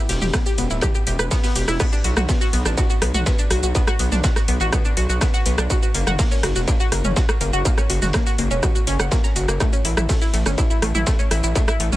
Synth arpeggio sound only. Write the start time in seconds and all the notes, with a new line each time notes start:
0.09 G4
0.22 G4
0.34 B3
0.46 G4
0.58 B3
0.71 E4
0.83 G4
0.95 G4
1.07 G4
1.19 B4
1.31 B3
1.44 B3
1.56 G4
1.68 E4
1.80 B3
1.92 D4
2.04 F#4
2.17 F#4
2.29 B3
2.41 F#4
2.53 B3
2.66 D4
2.78 F#4
2.90 F#4
3.02 B3
3.14 F#4
3.26 B3
3.39 D4
3.51 F#4
3.63 F#4
3.75 B3
3.88 F#4
4.00 B3
4.12 D4
4.24 F#4
4.36 F#4
4.48 B3
4.61 F#4
4.73 B3
4.85 D4
4.97 F#4
5.09 F#4
5.21 B3
5.34 F#4
5.46 B3
5.58 D4
5.70 F#4
5.83 F#4
5.95 A#3
6.07 F#4
6.19 A#3
6.31 C#4
6.43 F#4
6.56 F#4
6.68 A#3
6.80 F#4
6.92 A#3
7.05 C#4
7.17 F#4
7.29 F#4
7.41 A#3
7.53 F#4
7.65 A#3
7.78 C#4
7.90 F#4
8.02 F#4
8.14 A#3
8.27 F#4
8.38 A#3
8.51 C#4
8.63 F#4
8.75 F#4
8.87 C#4
9.00 F#5
9.12 A#3
9.24 A#5
9.36 F#4
9.49 A#3
9.61 A3
9.73 C#4
9.85 E4
9.97 E4
10.09 A3
10.22 E4
10.34 A3
10.46 C#4
10.58 E4
10.70 E4
10.82 A3
10.95 E4
11.07 A3
11.19 C#4
11.31 E4
11.44 E4
11.56 A3
11.68 E4
11.80 A3
11.92 C#4